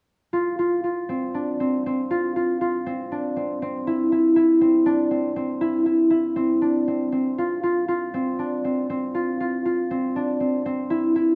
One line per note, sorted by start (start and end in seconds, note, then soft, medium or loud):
0.33 0.58 F4 medium
0.59 0.83 F4 medium
0.84 2.10 F4 medium
1.09 1.60 C4 medium
1.34 3.11 D4 medium
1.60 1.86 C4 medium
1.86 2.86 C4 medium
2.11 2.36 F4 medium
2.36 2.61 F4 medium
2.61 3.93 F4 medium
2.86 3.36 C4 medium
3.12 4.85 D4 medium
3.36 3.62 C4 medium
3.62 4.61 C4 medium
3.87 4.12 E4 medium
4.12 4.36 E4 medium
4.36 5.61 E4 medium
4.61 5.10 C4 medium
4.86 6.61 D4 medium
5.11 5.36 C4 medium
5.36 6.36 C4 medium
5.61 5.85 E4 medium
5.86 6.10 E4 medium
6.10 7.44 E4 medium
6.36 6.87 C4 medium
6.62 8.38 D4 medium
6.88 7.12 C4 medium
7.12 8.13 C4 medium
7.38 7.63 F4 medium
7.63 7.88 F4 medium
7.88 9.14 F4 medium
8.14 8.64 C4 medium
8.39 10.15 D4 medium
8.64 8.89 C4 medium
8.90 9.90 C4 medium
9.14 9.40 F4 medium
9.40 9.65 F4 medium
9.65 10.96 F4 medium
9.91 10.40 C4 medium
10.16 11.35 D4 medium
10.40 10.65 C4 medium
10.66 11.35 C4 medium
10.90 11.15 E4 medium
11.16 11.35 E4 medium